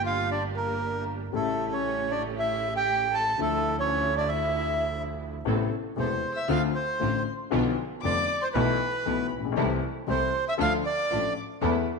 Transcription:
Already playing: grand piano G1 G2 D3 G3 A#3 G4, double bass G1, string section A#3 D4 G4
0.05 violin F4, bandoneon F5
0.31 violin D4, bandoneon D5
0.56 violin A#3, bandoneon A#4
1.31 grand piano A1 A2 C#3 G3 A3, double bass A1, string section A3 C#4 G4, violin A3
1.35 grand piano E4, bandoneon A4
1.72 violin C#4, bandoneon C#5
2.11 violin D4, bandoneon D5
2.35 violin E4, bandoneon E5
2.75 violin G4, bandoneon G5
3.12 violin A4, bandoneon A5
3.37 double bass D2, grand piano D2 D3 F3 A3 E4, string section D3 F3 E4, violin A3
3.42 bandoneon A4
3.79 violin C#4, bandoneon C#5
4.17 violin D4, bandoneon D5
4.28 violin E4, bandoneon E5
5.45 grand piano A1 A2 C3 A3 B3 E4, double bass A1, string section B3 C4 A4
5.96 grand piano E1 E2 C3 A3 B3 E4, double bass E1, string section B3 C4 A4, bandoneon C5, violin C6
6.35 bandoneon E5, violin E6
6.48 double bass D2, grand piano D2 D3 A3 C4 F4, string section C4 D4 F4, bandoneon F5, violin F6
6.75 bandoneon C5, violin C6
6.99 grand piano A1 A2 D3 A3 C4 F4, double bass A1, string section C4 D4 F4
7.51 grand piano B1 B2 D3 F3 B3 F4, double bass B1, string section B3 D4 F4
8.03 double bass F1, grand piano F1 F2 D3 F3 B3 F4, string section B3 D4 F4, bandoneon D5, violin D6
8.42 bandoneon C5, violin C6
8.53 double bass B1, grand piano B1 B2 E3 A3 B3 A4, string section A3 B3 E4, bandoneon B4, violin B5
9.05 grand piano B1 B2 E3 A3 B3 A4, double bass B1, string section A3 B3 E4
9.32 double bass A#1
9.38 grand piano A1
9.45 grand piano A#1
9.52 grand piano B1
9.57 grand piano C2 C3 E3 A3 C4 A4, double bass C2, string section A3 C4 E4
10.07 grand piano C2 C3 E3 A3 C4 A4, double bass C2, string section A3 C4 E4, bandoneon C5, violin C6
10.49 bandoneon E5, violin E6
10.58 grand piano D2 D3 F3 A3 D4 A4, double bass D2, string section A3 D4 F4, violin F6
10.62 bandoneon F5
10.86 bandoneon D5, violin D6
11.10 double bass A1, grand piano A1 A2 F3 A3 D4 A4, string section A3 D4 F4
11.61 double bass E2, grand piano E2 E3 A3 B3 A4, string section A3 B3 E4

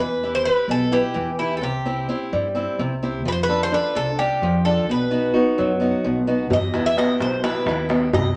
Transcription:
Already playing: upright bass E2
0.00 steel-string acoustic guitar E3, bouzouki B4
0.23 steel-string acoustic guitar E4 G4 B4
0.35 bouzouki C5
0.45 steel-string acoustic guitar E4 G4 B4, bouzouki B4
0.68 upright bass B1, steel-string acoustic guitar B2, bouzouki A4
0.92 steel-string acoustic guitar E4 G4 B4, bouzouki G4
1.14 upright bass E2, steel-string acoustic guitar E3
1.39 bouzouki E4, steel-string acoustic guitar E4 G4 B4
1.57 bouzouki A4
1.61 upright bass C2, steel-string acoustic guitar C3, bouzouki G4
1.86 steel-string acoustic guitar C4 E4 G4
2.09 steel-string acoustic guitar C4 E4 G4
2.33 upright bass G2, steel-string acoustic guitar G3
2.55 steel-string acoustic guitar C4 E4 G4
2.79 upright bass C2, steel-string acoustic guitar C3
3.03 steel-string acoustic guitar C4 E4 G4
3.25 upright bass F2, steel-string acoustic guitar F3, bouzouki B4
3.32 bouzouki C5
3.43 bouzouki B4
3.49 steel-string acoustic guitar D4 F4 A4
3.63 bouzouki C5
3.72 steel-string acoustic guitar D4 F4 A4, bouzouki B4
3.95 upright bass C2, steel-string acoustic guitar C3, bouzouki A4
4.19 steel-string acoustic guitar D4 F4 A4, bouzouki G4
4.42 upright bass F2, steel-string acoustic guitar F3
4.65 steel-string acoustic guitar D4 F4 A4, bouzouki A4
4.88 upright bass B1, steel-string acoustic guitar B2, bouzouki B4
5.11 steel-string acoustic guitar B3 D#4 F#4
5.33 steel-string acoustic guitar B3 D#4 F#4
5.58 upright bass F#2, steel-string acoustic guitar F#3
5.80 steel-string acoustic guitar B3 D#4 F#4
6.04 upright bass B1, steel-string acoustic guitar B2
6.27 steel-string acoustic guitar B3 D#4 F#4
6.50 upright bass E2, steel-string acoustic guitar E3, bouzouki D#5, darbuka dum
6.74 steel-string acoustic guitar B3 E4 G4, darbuka tek
6.86 bouzouki E5, darbuka tek
6.97 steel-string acoustic guitar B3 E4 G4, bouzouki D#5, darbuka tek
7.20 upright bass B1, steel-string acoustic guitar B2, bouzouki C5, darbuka tek
7.44 steel-string acoustic guitar B3 E4 G4, bouzouki B4, darbuka tek
7.56 darbuka tek
7.66 upright bass D#2, steel-string acoustic guitar E4, darbuka tek
7.89 steel-string acoustic guitar B3 E4 G4, darbuka tek
8.13 upright bass C2, steel-string acoustic guitar C3, bouzouki D#5, darbuka dum

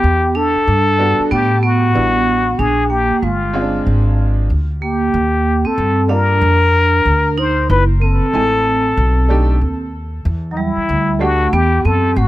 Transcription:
Already playing: vibraphone B3, muted trumpet G4
0.04 upright bass E2
0.35 vibraphone D4, muted trumpet A4
0.55 muted upright bass stroke
0.68 upright bass G2
0.98 upright piano G3 B3 D4 F#4
1.19 muted upright bass stroke
1.31 upright bass A2, vibraphone B3, muted trumpet G4
1.63 vibraphone B3, muted trumpet F#4
1.93 upright bass A1, upright piano G3 B3 D4 E4
2.59 upright bass A#1, vibraphone D4, muted trumpet G#4
2.90 vibraphone A#3, muted trumpet G4
3.10 muted upright bass stroke
3.22 upright bass G1, vibraphone G#3, muted trumpet F4
3.53 upright piano G#3 C4 C#4 F4
3.61 upright piano D4
3.87 upright bass G#1
4.50 upright bass D2
4.82 vibraphone A#3, muted trumpet G4
5.14 upright bass D#2
5.65 vibraphone C4, muted trumpet A4, muted upright bass stroke
5.78 upright bass G2
6.08 upright piano G3 A#3 D4 F4, vibraphone D4, muted trumpet A#4
6.42 upright bass F2
7.05 upright bass D2
7.38 vibraphone D#4, muted trumpet C5
7.70 upright bass F#1, vibraphone E4, muted trumpet B4
8.02 vibraphone C4, muted trumpet A4
8.21 muted upright bass stroke
8.32 upright bass A1, upright piano G#3 C4 E4 G#5
8.39 upright piano A3
8.97 upright bass B1
9.28 upright piano A3 D4 D#4 G4
9.61 upright bass D#2
10.25 upright bass E2
10.51 vibraphone F#3, muted trumpet D#4
10.57 vibraphone G3, muted trumpet E4
10.77 muted upright bass stroke
10.89 upright bass D2
11.19 upright piano A3 D4 F#4 G4, vibraphone A3, muted trumpet F#4
11.53 upright bass E2, vibraphone B3, muted trumpet G4
11.85 upright bass F#2, vibraphone C4, muted trumpet A4
12.16 upright bass G#1, vibraphone A3, muted trumpet F#4

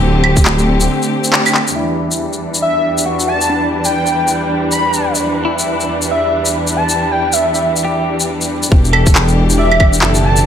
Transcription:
Already playing: string section D3 A3 C4 G4
0.02 detuned saw bass D1
0.24 claves
0.37 kick, shaker
0.45 clap
0.59 shaker
0.67 detuned saw bass D1
0.80 shaker
1.02 shaker
1.24 shaker
1.32 clean electric guitar G4, clap
1.46 claves, shaker
1.55 clap
1.68 shaker
1.75 string section E2 E3 G3 D4, clean electric guitar E4, synth texture B4
2.11 shaker
2.33 shaker
2.54 shaker
2.62 digital synth lead E5
2.98 shaker
3.06 clean electric guitar F#4
3.20 shaker
3.28 digital synth lead A5
3.41 shaker
3.49 clean electric guitar D4
3.85 digital synth lead G5, shaker
4.06 shaker
4.28 shaker
4.72 digital synth lead B5, shaker
4.93 shaker
5.15 shaker
5.45 clean electric guitar E4
5.59 shaker
5.80 shaker
6.02 shaker
6.11 digital synth lead E5
6.45 shaker
6.67 shaker
6.76 digital synth lead A5
6.89 shaker
7.11 digital synth lead G5
7.33 digital synth lead E5, shaker
7.54 shaker
7.76 shaker
7.85 clean electric guitar G4
8.20 shaker
8.41 shaker
8.63 shaker
8.71 detuned saw bass E1, string section B2 E3 D4 G4, kick
8.85 shaker
8.93 clean electric guitar A4, claves
9.06 kick, shaker
9.15 clap
9.28 shaker
9.50 shaker
9.58 clean electric guitar D5, digital synth lead E5
9.72 claves
9.80 detuned saw bass E1, kick, claves
9.93 shaker
10.01 detuned saw bass F#1, clean electric guitar A4, clap
10.15 shaker
10.24 digital synth lead A5
10.36 shaker

